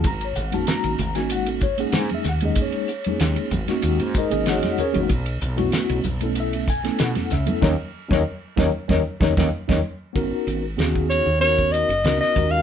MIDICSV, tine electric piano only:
0, 0, Header, 1, 2, 480
1, 0, Start_track
1, 0, Key_signature, 5, "minor"
1, 0, Tempo, 631579
1, 43, Time_signature, 4, 2, 24, 8
1, 9592, End_track
2, 0, Start_track
2, 0, Title_t, "Tine electric piano"
2, 0, Program_c, 0, 4
2, 52, Note_on_c, 0, 82, 104
2, 171, Note_off_c, 0, 82, 0
2, 188, Note_on_c, 0, 73, 58
2, 273, Note_on_c, 0, 78, 81
2, 289, Note_off_c, 0, 73, 0
2, 390, Note_on_c, 0, 56, 68
2, 394, Note_on_c, 0, 58, 71
2, 399, Note_on_c, 0, 61, 66
2, 399, Note_on_c, 0, 63, 65
2, 402, Note_off_c, 0, 78, 0
2, 403, Note_on_c, 0, 66, 71
2, 411, Note_on_c, 0, 81, 79
2, 514, Note_on_c, 0, 82, 108
2, 520, Note_off_c, 0, 81, 0
2, 752, Note_off_c, 0, 56, 0
2, 754, Note_off_c, 0, 58, 0
2, 756, Note_off_c, 0, 61, 0
2, 756, Note_off_c, 0, 63, 0
2, 758, Note_off_c, 0, 66, 0
2, 860, Note_off_c, 0, 82, 0
2, 873, Note_on_c, 0, 56, 73
2, 876, Note_on_c, 0, 80, 82
2, 877, Note_on_c, 0, 58, 71
2, 882, Note_on_c, 0, 63, 68
2, 883, Note_on_c, 0, 61, 72
2, 888, Note_on_c, 0, 66, 79
2, 992, Note_off_c, 0, 80, 0
2, 1001, Note_on_c, 0, 78, 79
2, 1125, Note_off_c, 0, 78, 0
2, 1127, Note_on_c, 0, 69, 55
2, 1233, Note_off_c, 0, 56, 0
2, 1235, Note_off_c, 0, 58, 0
2, 1237, Note_off_c, 0, 63, 0
2, 1237, Note_on_c, 0, 73, 81
2, 1238, Note_off_c, 0, 61, 0
2, 1238, Note_off_c, 0, 69, 0
2, 1240, Note_off_c, 0, 66, 0
2, 1352, Note_on_c, 0, 56, 81
2, 1357, Note_on_c, 0, 58, 71
2, 1361, Note_on_c, 0, 61, 69
2, 1363, Note_off_c, 0, 73, 0
2, 1366, Note_on_c, 0, 63, 72
2, 1371, Note_on_c, 0, 68, 81
2, 1371, Note_on_c, 0, 78, 73
2, 1479, Note_off_c, 0, 78, 0
2, 1484, Note_on_c, 0, 80, 92
2, 1606, Note_off_c, 0, 80, 0
2, 1630, Note_on_c, 0, 76, 80
2, 1712, Note_off_c, 0, 56, 0
2, 1715, Note_off_c, 0, 58, 0
2, 1717, Note_off_c, 0, 61, 0
2, 1719, Note_off_c, 0, 63, 0
2, 1722, Note_off_c, 0, 68, 0
2, 1729, Note_off_c, 0, 76, 0
2, 1739, Note_on_c, 0, 78, 96
2, 1839, Note_on_c, 0, 56, 78
2, 1844, Note_on_c, 0, 61, 69
2, 1845, Note_on_c, 0, 58, 63
2, 1850, Note_on_c, 0, 68, 84
2, 1851, Note_on_c, 0, 63, 70
2, 1854, Note_off_c, 0, 78, 0
2, 1865, Note_on_c, 0, 75, 78
2, 1966, Note_off_c, 0, 75, 0
2, 1990, Note_on_c, 0, 73, 73
2, 2195, Note_off_c, 0, 56, 0
2, 2198, Note_off_c, 0, 58, 0
2, 2198, Note_off_c, 0, 61, 0
2, 2201, Note_off_c, 0, 63, 0
2, 2201, Note_off_c, 0, 68, 0
2, 2326, Note_on_c, 0, 56, 74
2, 2331, Note_on_c, 0, 58, 62
2, 2331, Note_on_c, 0, 61, 67
2, 2336, Note_on_c, 0, 63, 64
2, 2344, Note_on_c, 0, 68, 75
2, 2665, Note_off_c, 0, 73, 0
2, 2679, Note_off_c, 0, 56, 0
2, 2681, Note_off_c, 0, 58, 0
2, 2681, Note_off_c, 0, 61, 0
2, 2684, Note_off_c, 0, 63, 0
2, 2688, Note_off_c, 0, 68, 0
2, 2796, Note_on_c, 0, 56, 88
2, 2800, Note_on_c, 0, 58, 85
2, 2800, Note_on_c, 0, 61, 83
2, 2805, Note_on_c, 0, 63, 78
2, 2806, Note_on_c, 0, 66, 99
2, 3154, Note_off_c, 0, 56, 0
2, 3156, Note_off_c, 0, 58, 0
2, 3156, Note_off_c, 0, 61, 0
2, 3158, Note_off_c, 0, 63, 0
2, 3159, Note_off_c, 0, 66, 0
2, 3175, Note_on_c, 0, 70, 70
2, 3177, Note_on_c, 0, 68, 67
2, 3178, Note_on_c, 0, 75, 90
2, 3179, Note_on_c, 0, 63, 67
2, 3265, Note_off_c, 0, 63, 0
2, 3266, Note_on_c, 0, 56, 82
2, 3268, Note_on_c, 0, 58, 70
2, 3270, Note_off_c, 0, 68, 0
2, 3274, Note_on_c, 0, 61, 70
2, 3274, Note_on_c, 0, 63, 69
2, 3279, Note_on_c, 0, 68, 91
2, 3401, Note_off_c, 0, 70, 0
2, 3402, Note_off_c, 0, 75, 0
2, 3412, Note_on_c, 0, 78, 82
2, 3419, Note_on_c, 0, 73, 66
2, 3419, Note_on_c, 0, 75, 72
2, 3425, Note_on_c, 0, 66, 66
2, 3628, Note_off_c, 0, 56, 0
2, 3629, Note_off_c, 0, 58, 0
2, 3633, Note_off_c, 0, 61, 0
2, 3633, Note_off_c, 0, 63, 0
2, 3635, Note_off_c, 0, 68, 0
2, 3638, Note_off_c, 0, 73, 0
2, 3639, Note_off_c, 0, 78, 0
2, 3643, Note_off_c, 0, 75, 0
2, 3643, Note_on_c, 0, 61, 73
2, 3646, Note_off_c, 0, 66, 0
2, 3646, Note_on_c, 0, 70, 77
2, 3647, Note_on_c, 0, 73, 88
2, 3648, Note_on_c, 0, 68, 72
2, 3738, Note_off_c, 0, 61, 0
2, 3744, Note_on_c, 0, 56, 78
2, 3744, Note_on_c, 0, 58, 70
2, 3747, Note_on_c, 0, 61, 75
2, 3753, Note_on_c, 0, 63, 77
2, 3754, Note_on_c, 0, 66, 87
2, 3788, Note_off_c, 0, 70, 0
2, 3789, Note_off_c, 0, 68, 0
2, 3789, Note_off_c, 0, 73, 0
2, 3868, Note_off_c, 0, 56, 0
2, 3868, Note_off_c, 0, 58, 0
2, 3870, Note_off_c, 0, 61, 0
2, 3873, Note_off_c, 0, 63, 0
2, 3873, Note_off_c, 0, 66, 0
2, 4225, Note_on_c, 0, 57, 80
2, 4228, Note_on_c, 0, 59, 89
2, 4228, Note_on_c, 0, 61, 81
2, 4234, Note_on_c, 0, 64, 77
2, 4240, Note_on_c, 0, 66, 99
2, 4588, Note_off_c, 0, 57, 0
2, 4589, Note_off_c, 0, 59, 0
2, 4589, Note_off_c, 0, 61, 0
2, 4592, Note_off_c, 0, 64, 0
2, 4595, Note_off_c, 0, 66, 0
2, 4721, Note_on_c, 0, 57, 78
2, 4721, Note_on_c, 0, 59, 71
2, 4729, Note_on_c, 0, 64, 72
2, 4730, Note_on_c, 0, 61, 68
2, 4736, Note_on_c, 0, 69, 85
2, 4864, Note_on_c, 0, 76, 86
2, 5075, Note_off_c, 0, 57, 0
2, 5075, Note_off_c, 0, 59, 0
2, 5079, Note_off_c, 0, 64, 0
2, 5080, Note_off_c, 0, 61, 0
2, 5083, Note_off_c, 0, 69, 0
2, 5085, Note_off_c, 0, 76, 0
2, 5090, Note_on_c, 0, 80, 106
2, 5194, Note_on_c, 0, 57, 78
2, 5197, Note_on_c, 0, 59, 77
2, 5205, Note_on_c, 0, 61, 78
2, 5205, Note_on_c, 0, 64, 70
2, 5209, Note_on_c, 0, 69, 88
2, 5317, Note_off_c, 0, 80, 0
2, 5344, Note_on_c, 0, 78, 75
2, 5552, Note_off_c, 0, 57, 0
2, 5553, Note_off_c, 0, 59, 0
2, 5557, Note_off_c, 0, 61, 0
2, 5557, Note_off_c, 0, 64, 0
2, 5559, Note_off_c, 0, 69, 0
2, 5565, Note_off_c, 0, 78, 0
2, 5565, Note_on_c, 0, 76, 89
2, 5663, Note_on_c, 0, 57, 74
2, 5669, Note_on_c, 0, 59, 74
2, 5675, Note_on_c, 0, 61, 67
2, 5675, Note_on_c, 0, 64, 70
2, 5678, Note_on_c, 0, 69, 78
2, 5776, Note_off_c, 0, 61, 0
2, 5785, Note_off_c, 0, 76, 0
2, 5785, Note_on_c, 0, 61, 97
2, 5786, Note_on_c, 0, 58, 94
2, 5787, Note_off_c, 0, 57, 0
2, 5788, Note_on_c, 0, 63, 102
2, 5790, Note_off_c, 0, 59, 0
2, 5792, Note_on_c, 0, 75, 97
2, 5793, Note_off_c, 0, 64, 0
2, 5793, Note_on_c, 0, 70, 102
2, 5795, Note_off_c, 0, 69, 0
2, 5797, Note_on_c, 0, 73, 99
2, 5872, Note_off_c, 0, 61, 0
2, 5873, Note_off_c, 0, 58, 0
2, 5874, Note_off_c, 0, 63, 0
2, 5877, Note_off_c, 0, 70, 0
2, 5877, Note_off_c, 0, 75, 0
2, 5879, Note_off_c, 0, 73, 0
2, 6145, Note_on_c, 0, 61, 80
2, 6147, Note_on_c, 0, 63, 94
2, 6148, Note_on_c, 0, 58, 93
2, 6167, Note_on_c, 0, 73, 109
2, 6176, Note_on_c, 0, 70, 96
2, 6178, Note_on_c, 0, 75, 104
2, 6226, Note_off_c, 0, 61, 0
2, 6227, Note_off_c, 0, 63, 0
2, 6228, Note_off_c, 0, 58, 0
2, 6239, Note_off_c, 0, 73, 0
2, 6244, Note_off_c, 0, 70, 0
2, 6246, Note_off_c, 0, 75, 0
2, 6509, Note_on_c, 0, 58, 98
2, 6512, Note_on_c, 0, 63, 106
2, 6513, Note_on_c, 0, 61, 100
2, 6525, Note_on_c, 0, 75, 96
2, 6533, Note_on_c, 0, 70, 98
2, 6533, Note_on_c, 0, 73, 103
2, 6595, Note_off_c, 0, 58, 0
2, 6597, Note_off_c, 0, 61, 0
2, 6597, Note_off_c, 0, 63, 0
2, 6604, Note_off_c, 0, 75, 0
2, 6609, Note_off_c, 0, 70, 0
2, 6609, Note_off_c, 0, 73, 0
2, 6750, Note_on_c, 0, 58, 98
2, 6750, Note_on_c, 0, 61, 102
2, 6751, Note_on_c, 0, 63, 91
2, 6767, Note_on_c, 0, 73, 94
2, 6770, Note_on_c, 0, 70, 102
2, 6772, Note_on_c, 0, 75, 96
2, 6835, Note_off_c, 0, 58, 0
2, 6835, Note_off_c, 0, 61, 0
2, 6836, Note_off_c, 0, 63, 0
2, 6845, Note_off_c, 0, 73, 0
2, 6847, Note_off_c, 0, 70, 0
2, 6848, Note_off_c, 0, 75, 0
2, 6992, Note_on_c, 0, 63, 99
2, 6995, Note_on_c, 0, 61, 100
2, 6997, Note_on_c, 0, 58, 102
2, 7005, Note_on_c, 0, 70, 88
2, 7005, Note_on_c, 0, 75, 97
2, 7007, Note_on_c, 0, 73, 99
2, 7077, Note_off_c, 0, 63, 0
2, 7078, Note_off_c, 0, 61, 0
2, 7079, Note_off_c, 0, 58, 0
2, 7084, Note_off_c, 0, 70, 0
2, 7084, Note_off_c, 0, 75, 0
2, 7085, Note_off_c, 0, 73, 0
2, 7125, Note_on_c, 0, 58, 96
2, 7125, Note_on_c, 0, 70, 99
2, 7126, Note_on_c, 0, 63, 97
2, 7129, Note_on_c, 0, 75, 97
2, 7130, Note_on_c, 0, 61, 98
2, 7130, Note_on_c, 0, 73, 90
2, 7198, Note_off_c, 0, 58, 0
2, 7198, Note_off_c, 0, 63, 0
2, 7198, Note_off_c, 0, 70, 0
2, 7200, Note_off_c, 0, 75, 0
2, 7201, Note_off_c, 0, 61, 0
2, 7201, Note_off_c, 0, 73, 0
2, 7355, Note_on_c, 0, 63, 92
2, 7359, Note_on_c, 0, 61, 87
2, 7360, Note_on_c, 0, 58, 95
2, 7365, Note_on_c, 0, 75, 103
2, 7368, Note_on_c, 0, 70, 91
2, 7374, Note_on_c, 0, 73, 98
2, 7432, Note_off_c, 0, 63, 0
2, 7434, Note_off_c, 0, 58, 0
2, 7434, Note_off_c, 0, 61, 0
2, 7438, Note_off_c, 0, 75, 0
2, 7440, Note_off_c, 0, 70, 0
2, 7443, Note_off_c, 0, 73, 0
2, 7699, Note_on_c, 0, 59, 81
2, 7707, Note_on_c, 0, 61, 79
2, 7707, Note_on_c, 0, 63, 73
2, 7714, Note_on_c, 0, 66, 72
2, 7720, Note_on_c, 0, 70, 91
2, 8076, Note_off_c, 0, 59, 0
2, 8080, Note_off_c, 0, 61, 0
2, 8080, Note_off_c, 0, 63, 0
2, 8084, Note_off_c, 0, 66, 0
2, 8087, Note_off_c, 0, 70, 0
2, 8182, Note_on_c, 0, 59, 84
2, 8189, Note_on_c, 0, 61, 70
2, 8189, Note_on_c, 0, 63, 69
2, 8193, Note_on_c, 0, 66, 72
2, 8194, Note_on_c, 0, 68, 92
2, 8558, Note_off_c, 0, 59, 0
2, 8561, Note_off_c, 0, 61, 0
2, 8562, Note_off_c, 0, 63, 0
2, 8564, Note_off_c, 0, 66, 0
2, 8564, Note_off_c, 0, 68, 0
2, 8662, Note_on_c, 0, 59, 73
2, 8667, Note_on_c, 0, 61, 67
2, 8676, Note_on_c, 0, 66, 69
2, 8677, Note_on_c, 0, 63, 66
2, 8681, Note_on_c, 0, 70, 81
2, 9038, Note_off_c, 0, 59, 0
2, 9041, Note_off_c, 0, 61, 0
2, 9045, Note_off_c, 0, 66, 0
2, 9046, Note_off_c, 0, 63, 0
2, 9048, Note_off_c, 0, 70, 0
2, 9153, Note_on_c, 0, 59, 73
2, 9154, Note_on_c, 0, 63, 63
2, 9155, Note_on_c, 0, 61, 62
2, 9160, Note_on_c, 0, 66, 65
2, 9164, Note_on_c, 0, 70, 83
2, 9377, Note_off_c, 0, 61, 0
2, 9381, Note_off_c, 0, 66, 0
2, 9383, Note_on_c, 0, 56, 64
2, 9386, Note_off_c, 0, 70, 0
2, 9387, Note_on_c, 0, 61, 60
2, 9389, Note_on_c, 0, 65, 62
2, 9390, Note_on_c, 0, 66, 61
2, 9396, Note_on_c, 0, 70, 69
2, 9398, Note_off_c, 0, 59, 0
2, 9398, Note_off_c, 0, 63, 0
2, 9592, Note_off_c, 0, 56, 0
2, 9592, Note_off_c, 0, 61, 0
2, 9592, Note_off_c, 0, 65, 0
2, 9592, Note_off_c, 0, 66, 0
2, 9592, Note_off_c, 0, 70, 0
2, 9592, End_track
0, 0, End_of_file